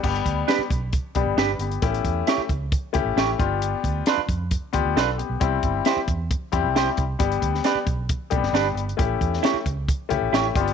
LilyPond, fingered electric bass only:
\new Staff \with { instrumentName = "Fingered electric bass" } { \clef bass \time 4/4 \key g \mixolydian \tempo 4 = 134 g,,8 d,8 r8 b,,8. r16 b,,16 g,,16 g,,8 g,,8 | a,,8 e,8 r8 cis,8. r16 cis,16 a,,16 a,,8 g,,8~ | g,,8 d,8 r8 f,8. r16 d,16 d,16 b,,8. b,,16 | c,8 g,,8 r8 e,8. r16 e,16 c,8. c,8 |
g,,8 d,8 r8 b,,8. r16 b,,16 g,,16 g,,8 g,,8 | a,,8 e,8 r8 cis,8. r16 cis,16 a,,16 a,,8 g,,8 | }